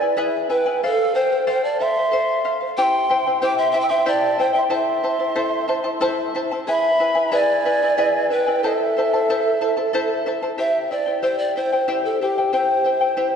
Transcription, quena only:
0.00 0.19 G#5 medium
0.52 0.82 G5 medium
0.84 1.17 F5 medium
1.15 1.48 G5 medium
1.49 1.66 G5 medium
1.64 1.84 A5 medium
1.82 2.55 C6 medium
2.78 2.83 D6 medium
2.82 3.39 C6 medium
3.44 3.58 D6 medium
3.59 3.75 C6 medium
3.77 3.85 C6 medium
3.84 3.92 E6 medium
3.90 4.11 C6 medium
4.09 4.43 A5 medium
4.41 4.57 G5 medium
4.58 4.64 C6 medium
4.75 6.33 C6 medium
6.72 7.38 B5 medium
7.36 8.32 G#5 medium
8.33 8.68 G5 medium
8.66 10.28 E5 medium

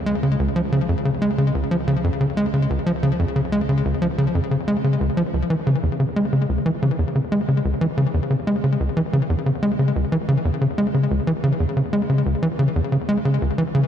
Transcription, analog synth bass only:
0.06 0.15 G#3 loud
0.23 0.36 C#3 medium
0.39 0.48 C#2 medium
0.56 0.61 F3 medium
0.72 0.81 C#3 medium
0.89 0.94 F2 medium
1.05 1.11 C#3 medium
1.22 1.31 G#3 medium
1.38 1.52 C#3 medium
1.55 1.64 C#2 medium
1.71 1.77 F3 medium
1.88 1.97 C#3 medium
2.04 2.10 F2 medium
2.21 2.26 C#3 medium
2.37 2.46 G#3 loud
2.54 2.67 C#3 medium
2.70 2.79 C#2 medium
2.86 2.92 F3 loud
3.03 3.12 C#3 loud
3.19 3.25 F2 medium
3.36 3.41 C#3 medium
3.52 3.61 G#3 loud
3.69 3.82 C#3 medium
3.85 3.94 C#2 medium
4.02 4.07 F3 medium
4.18 4.27 C#3 loud
4.35 4.40 F2 medium
4.51 4.57 C#3 medium
4.68 4.77 G#3 loud
4.84 4.98 C#3 medium
5.01 5.10 C#2 medium
5.17 5.23 F3 loud
5.34 5.43 C#2 medium
5.50 5.56 E3 loud
5.67 5.76 C#3 loud
5.83 5.89 E2 medium
6.00 6.05 C#3 medium
6.16 6.25 G#3 loud
6.33 6.46 C#3 medium
6.49 6.58 C#2 medium
6.66 6.71 E3 loud
6.82 6.91 C#3 loud
6.99 7.04 E2 medium
7.15 7.21 C#3 medium
7.32 7.41 G#3 loud
7.48 7.62 C#3 medium
7.65 7.74 C#2 medium
7.81 7.87 E3 loud
7.98 8.07 C#3 loud
8.14 8.19 E2 medium
8.31 8.36 C#3 medium
8.47 8.56 G#3 loud
8.64 8.77 C#3 medium
8.80 8.89 C#2 medium
8.97 9.02 E3 loud
9.13 9.22 C#3 loud
9.30 9.35 E2 medium
9.46 9.51 C#3 medium
9.63 9.71 G#3 loud
9.79 9.92 C#3 medium
9.96 10.05 C#2 medium
10.12 10.17 E3 loud
10.28 10.37 C#3 loud
10.45 10.50 E2 medium
10.61 10.67 C#3 medium
10.78 10.87 G#3 loud
10.94 11.08 C#3 medium
11.11 11.20 C#2 medium
11.27 11.33 E3 loud
11.44 11.53 C#3 loud
11.60 11.65 E2 medium
11.77 11.82 C#3 medium
11.93 12.02 G#3 medium
12.09 12.23 C#3 medium
12.26 12.35 C#2 medium
12.42 12.48 E3 loud
12.59 12.68 C#3 loud
12.76 12.81 E2 medium
12.92 12.97 C#3 medium
13.09 13.18 G#3 loud
13.25 13.38 C#3 medium
13.42 13.51 C#2 medium
13.58 13.63 E3 medium
13.75 13.83 C#3 medium

